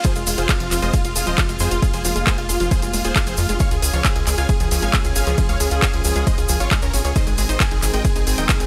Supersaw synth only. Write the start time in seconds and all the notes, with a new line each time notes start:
0.05 G#4 C5
0.16 F4
0.27 F4
0.38 G#4 C5
0.49 F4
0.60 F4
0.71 F4
0.82 C5 D#5
0.94 F4
1.05 F4
1.16 F4
1.27 C5 D#5
1.38 F4
1.49 F4
1.60 G#4 C5
1.71 F4
1.82 F4
1.94 G#4 C5
2.05 F4
2.16 F4
2.27 G#4 C5
2.38 F4
2.49 F4
2.60 F4
2.71 G#4 C5
2.82 F4
2.93 F4
3.05 G#4 C5
3.16 F4
3.27 G#4 C5
3.38 F4
3.49 F4
3.60 C#5 F5
3.71 G#4
3.82 G#4
3.93 C#5 F5
4.05 G#4
4.16 G#4
4.27 G#4
4.38 F5 G#5
4.49 G#4
4.60 G#4
4.71 G#4
4.82 F5 G#5
4.93 G#4
5.05 G#4
5.16 F5 G#5
5.27 G#4
5.38 G#4
5.49 C#5 F5
5.60 G#4
5.71 G#4
5.82 C#5 F5
5.94 G#4
6.05 G#4
6.16 G#4
6.27 C5 D#5
6.38 G#4
6.49 G#4
6.60 F4 C#5
6.71 G#4
6.82 C#4 A#4
6.94 G#4
7.05 G#4
7.16 C5 D#5
7.27 G#4
7.38 G#4
7.49 C5 D#5
7.60 G#4
7.71 G#4
7.82 G#4
7.94 D#5 G5
8.05 G#4
8.16 G#4
8.27 G#4
8.38 D#5 G5
8.49 G#4
8.60 G#4